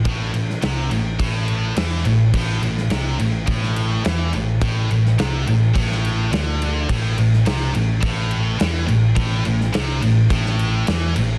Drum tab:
CC |x-x-x-x-x-x-x-x-|x-x-x-x-x-x-x-x-|x-x-x-x-x-x-x-x-|x-x-x-x-x-x-x-x-|
SD |---oo-------o---|---oo----o--o---|---oo----o--o---|---oo-------o---|
BD |o-------o-------|o-------o-------|o-------o-------|o-------o-------|

CC |x-x-x-x-x-x-x-x-|
SD |---oo----o--o---|
BD |o-------o-------|